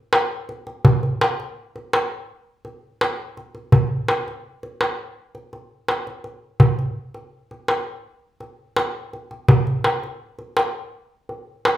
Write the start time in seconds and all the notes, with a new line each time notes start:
0.13 darbuka tek
0.49 darbuka ka
0.67 darbuka ka
0.85 darbuka dum
1.03 darbuka ka
1.21 darbuka tek
1.40 darbuka ka
1.76 darbuka ka
1.93 darbuka tek
2.65 darbuka ka
3.01 darbuka tek
3.37 darbuka ka
3.55 darbuka ka
3.72 darbuka dum
4.08 darbuka tek
4.28 darbuka ka
4.63 darbuka ka
4.81 darbuka tek
5.35 darbuka ka
5.53 darbuka ka
5.88 darbuka tek
6.07 darbuka ka
6.24 darbuka ka
6.60 darbuka dum
6.79 darbuka ka
7.14 darbuka ka
7.51 darbuka ka
7.68 darbuka tek
8.40 darbuka ka
8.76 darbuka tek
9.13 darbuka ka
9.31 darbuka ka
9.48 darbuka dum
9.67 darbuka ka
9.84 darbuka tek
10.04 darbuka ka
10.39 darbuka ka
10.57 darbuka tek
11.29 darbuka ka
11.65 darbuka tek